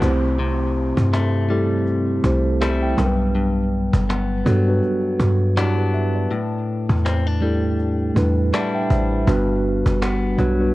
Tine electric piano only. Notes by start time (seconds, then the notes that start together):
0.00 A3 C4 E4 G4 C5
1.48 A3 C4 E4 G4 A4
2.22 A3 C4 E4 G4 C5
2.61 E5
2.82 G5
2.96 F#3 G3 B3 D4 A#4
3.06 B4
4.44 G3 B3 D4 F#4 A4
4.66 G3 B3 D4 F#4 B4
5.57 E4 G4
5.78 G4 B4
5.94 E5
6.15 B4 D5
7.41 G3 A3 D4 E4 A4
8.15 G3 A3 D4 E4 B4
8.53 F#5 A5
8.75 E5 G5
8.91 C5 E5
9.12 B4 D5
9.26 G3 B3 D4 F#4 B4
10.37 G3 B3 D4 F#4 B4
10.59 G3 B3 D4 F#4 B4